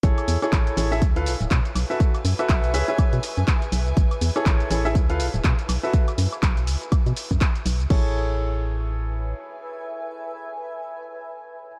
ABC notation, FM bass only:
X:1
M:4/4
L:1/16
Q:"Swing 16ths" 1/4=122
K:A
V:1 name="FM bass" clef=bass
A,,, z E,, z A,,, z A,,,2 D,,2 B,,, D,,, B,, z B,,, z | z2 F,, z B,,,2 C,, z2 B,, z F,, z2 B,,, C,, | A,,, z E,, z A,,, z A,,,2 D,,2 B,,, D,,, B,, z B,,, z | z2 F,, z B,,,2 C,, z2 B,, z F,, z2 B,,, C,, |
A,,,12 z4 | z16 |]